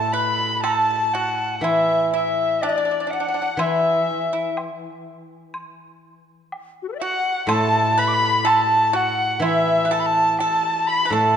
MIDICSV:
0, 0, Header, 1, 6, 480
1, 0, Start_track
1, 0, Tempo, 995025
1, 1260, Tempo, 972447
1, 1743, Time_signature, 4, 2, 24, 8
1, 5581, End_track
2, 0, Start_track
2, 0, Title_t, "Erhu"
2, 0, Program_c, 0, 110
2, 0, Note_on_c, 0, 81, 98
2, 57, Note_on_c, 0, 83, 100
2, 64, Note_off_c, 0, 81, 0
2, 300, Note_off_c, 0, 83, 0
2, 303, Note_on_c, 0, 81, 96
2, 546, Note_on_c, 0, 78, 85
2, 553, Note_off_c, 0, 81, 0
2, 783, Note_on_c, 0, 76, 93
2, 791, Note_off_c, 0, 78, 0
2, 1024, Note_off_c, 0, 76, 0
2, 1030, Note_on_c, 0, 76, 82
2, 1268, Note_on_c, 0, 74, 83
2, 1275, Note_off_c, 0, 76, 0
2, 1503, Note_on_c, 0, 78, 89
2, 1511, Note_off_c, 0, 74, 0
2, 1750, Note_on_c, 0, 76, 88
2, 1757, Note_off_c, 0, 78, 0
2, 2228, Note_off_c, 0, 76, 0
2, 3431, Note_on_c, 0, 78, 102
2, 3651, Note_off_c, 0, 78, 0
2, 3670, Note_on_c, 0, 81, 115
2, 3912, Note_on_c, 0, 83, 115
2, 3919, Note_off_c, 0, 81, 0
2, 4147, Note_on_c, 0, 81, 105
2, 4155, Note_off_c, 0, 83, 0
2, 4392, Note_on_c, 0, 78, 98
2, 4399, Note_off_c, 0, 81, 0
2, 4627, Note_off_c, 0, 78, 0
2, 4630, Note_on_c, 0, 76, 100
2, 4863, Note_on_c, 0, 81, 100
2, 4870, Note_off_c, 0, 76, 0
2, 5101, Note_off_c, 0, 81, 0
2, 5103, Note_on_c, 0, 81, 103
2, 5343, Note_on_c, 0, 83, 100
2, 5350, Note_off_c, 0, 81, 0
2, 5466, Note_on_c, 0, 81, 107
2, 5474, Note_off_c, 0, 83, 0
2, 5581, Note_off_c, 0, 81, 0
2, 5581, End_track
3, 0, Start_track
3, 0, Title_t, "Recorder"
3, 0, Program_c, 1, 74
3, 0, Note_on_c, 1, 81, 84
3, 59, Note_on_c, 1, 83, 84
3, 66, Note_off_c, 1, 81, 0
3, 263, Note_off_c, 1, 83, 0
3, 263, Note_on_c, 1, 83, 62
3, 296, Note_on_c, 1, 81, 85
3, 303, Note_off_c, 1, 83, 0
3, 752, Note_on_c, 1, 78, 56
3, 759, Note_off_c, 1, 81, 0
3, 795, Note_on_c, 1, 76, 81
3, 802, Note_off_c, 1, 78, 0
3, 1024, Note_off_c, 1, 76, 0
3, 1027, Note_on_c, 1, 76, 77
3, 1263, Note_on_c, 1, 74, 73
3, 1270, Note_off_c, 1, 76, 0
3, 1504, Note_on_c, 1, 78, 78
3, 1512, Note_off_c, 1, 74, 0
3, 1747, Note_on_c, 1, 76, 70
3, 1755, Note_off_c, 1, 78, 0
3, 2227, Note_off_c, 1, 76, 0
3, 3339, Note_on_c, 1, 66, 36
3, 3366, Note_off_c, 1, 66, 0
3, 3369, Note_on_c, 1, 69, 41
3, 3383, Note_off_c, 1, 69, 0
3, 3386, Note_on_c, 1, 71, 46
3, 3399, Note_off_c, 1, 71, 0
3, 3401, Note_on_c, 1, 74, 53
3, 3417, Note_off_c, 1, 74, 0
3, 3420, Note_on_c, 1, 76, 58
3, 3440, Note_off_c, 1, 76, 0
3, 3443, Note_on_c, 1, 78, 89
3, 3676, Note_on_c, 1, 81, 97
3, 3683, Note_off_c, 1, 78, 0
3, 3923, Note_on_c, 1, 83, 89
3, 3930, Note_off_c, 1, 81, 0
3, 3958, Note_on_c, 1, 86, 77
3, 3965, Note_off_c, 1, 83, 0
3, 3989, Note_on_c, 1, 83, 98
3, 3996, Note_off_c, 1, 86, 0
3, 4163, Note_on_c, 1, 81, 88
3, 4171, Note_off_c, 1, 83, 0
3, 4196, Note_on_c, 1, 83, 75
3, 4203, Note_off_c, 1, 81, 0
3, 4223, Note_on_c, 1, 81, 90
3, 4230, Note_off_c, 1, 83, 0
3, 4395, Note_on_c, 1, 78, 91
3, 4402, Note_off_c, 1, 81, 0
3, 4625, Note_off_c, 1, 78, 0
3, 4628, Note_on_c, 1, 76, 87
3, 4873, Note_on_c, 1, 81, 90
3, 4880, Note_off_c, 1, 76, 0
3, 4905, Note_on_c, 1, 83, 75
3, 4913, Note_off_c, 1, 81, 0
3, 4937, Note_on_c, 1, 81, 92
3, 4945, Note_off_c, 1, 83, 0
3, 5096, Note_off_c, 1, 81, 0
3, 5098, Note_on_c, 1, 81, 93
3, 5335, Note_on_c, 1, 83, 90
3, 5342, Note_off_c, 1, 81, 0
3, 5454, Note_on_c, 1, 81, 89
3, 5462, Note_off_c, 1, 83, 0
3, 5581, Note_off_c, 1, 81, 0
3, 5581, End_track
4, 0, Start_track
4, 0, Title_t, "Pipa"
4, 0, Program_c, 2, 105
4, 65, Note_on_c, 2, 71, 82
4, 287, Note_off_c, 2, 71, 0
4, 307, Note_on_c, 2, 69, 79
4, 529, Note_off_c, 2, 69, 0
4, 553, Note_on_c, 2, 66, 76
4, 773, Note_off_c, 2, 66, 0
4, 791, Note_on_c, 2, 64, 73
4, 1011, Note_off_c, 2, 64, 0
4, 1030, Note_on_c, 2, 64, 68
4, 1247, Note_off_c, 2, 64, 0
4, 1269, Note_on_c, 2, 62, 74
4, 1293, Note_off_c, 2, 62, 0
4, 1299, Note_on_c, 2, 62, 49
4, 1331, Note_off_c, 2, 62, 0
4, 1341, Note_on_c, 2, 62, 56
4, 1371, Note_off_c, 2, 62, 0
4, 1378, Note_on_c, 2, 62, 45
4, 1402, Note_off_c, 2, 62, 0
4, 1408, Note_on_c, 2, 62, 48
4, 1440, Note_off_c, 2, 62, 0
4, 1452, Note_on_c, 2, 62, 40
4, 1479, Note_off_c, 2, 62, 0
4, 1485, Note_on_c, 2, 62, 47
4, 1509, Note_off_c, 2, 62, 0
4, 1515, Note_on_c, 2, 62, 44
4, 1545, Note_off_c, 2, 62, 0
4, 1551, Note_on_c, 2, 62, 50
4, 1584, Note_off_c, 2, 62, 0
4, 1592, Note_on_c, 2, 62, 45
4, 1614, Note_off_c, 2, 62, 0
4, 1620, Note_on_c, 2, 62, 52
4, 1652, Note_off_c, 2, 62, 0
4, 1658, Note_on_c, 2, 62, 48
4, 1692, Note_off_c, 2, 62, 0
4, 1743, Note_on_c, 2, 64, 74
4, 2085, Note_off_c, 2, 64, 0
4, 2108, Note_on_c, 2, 64, 59
4, 2218, Note_off_c, 2, 64, 0
4, 3433, Note_on_c, 2, 66, 86
4, 3652, Note_off_c, 2, 66, 0
4, 3666, Note_on_c, 2, 69, 94
4, 3888, Note_off_c, 2, 69, 0
4, 3907, Note_on_c, 2, 71, 92
4, 4129, Note_off_c, 2, 71, 0
4, 4140, Note_on_c, 2, 69, 91
4, 4366, Note_off_c, 2, 69, 0
4, 4380, Note_on_c, 2, 66, 82
4, 4604, Note_off_c, 2, 66, 0
4, 4621, Note_on_c, 2, 64, 79
4, 4812, Note_off_c, 2, 64, 0
4, 4832, Note_on_c, 2, 71, 64
4, 4861, Note_off_c, 2, 71, 0
4, 4863, Note_on_c, 2, 69, 86
4, 5084, Note_off_c, 2, 69, 0
4, 5106, Note_on_c, 2, 69, 92
4, 5410, Note_off_c, 2, 69, 0
4, 5427, Note_on_c, 2, 71, 64
4, 5460, Note_off_c, 2, 71, 0
4, 5462, Note_on_c, 2, 69, 75
4, 5581, Note_off_c, 2, 69, 0
4, 5581, End_track
5, 0, Start_track
5, 0, Title_t, "Guzheng"
5, 0, Program_c, 3, 107
5, 0, Note_on_c, 3, 45, 54
5, 777, Note_on_c, 3, 52, 57
5, 1256, Note_off_c, 3, 45, 0
5, 1727, Note_off_c, 3, 52, 0
5, 1733, Note_on_c, 3, 52, 62
5, 3181, Note_off_c, 3, 52, 0
5, 3657, Note_on_c, 3, 45, 66
5, 4608, Note_on_c, 3, 52, 67
5, 5096, Note_off_c, 3, 45, 0
5, 5451, Note_on_c, 3, 45, 68
5, 5581, Note_off_c, 3, 45, 0
5, 5581, Note_off_c, 3, 52, 0
5, 5581, End_track
6, 0, Start_track
6, 0, Title_t, "Drums"
6, 307, Note_on_c, 9, 76, 46
6, 307, Note_on_c, 9, 77, 43
6, 355, Note_off_c, 9, 76, 0
6, 355, Note_off_c, 9, 77, 0
6, 792, Note_on_c, 9, 76, 48
6, 840, Note_off_c, 9, 76, 0
6, 1267, Note_on_c, 9, 77, 46
6, 1316, Note_off_c, 9, 77, 0
6, 1744, Note_on_c, 9, 76, 65
6, 1793, Note_off_c, 9, 76, 0
6, 2227, Note_on_c, 9, 76, 46
6, 2227, Note_on_c, 9, 77, 46
6, 2277, Note_off_c, 9, 76, 0
6, 2277, Note_off_c, 9, 77, 0
6, 2705, Note_on_c, 9, 76, 48
6, 2754, Note_off_c, 9, 76, 0
6, 3190, Note_on_c, 9, 77, 45
6, 3240, Note_off_c, 9, 77, 0
6, 3666, Note_on_c, 9, 76, 72
6, 3716, Note_off_c, 9, 76, 0
6, 4148, Note_on_c, 9, 76, 47
6, 4148, Note_on_c, 9, 77, 46
6, 4198, Note_off_c, 9, 76, 0
6, 4198, Note_off_c, 9, 77, 0
6, 4623, Note_on_c, 9, 76, 46
6, 4672, Note_off_c, 9, 76, 0
6, 5098, Note_on_c, 9, 77, 43
6, 5147, Note_off_c, 9, 77, 0
6, 5581, End_track
0, 0, End_of_file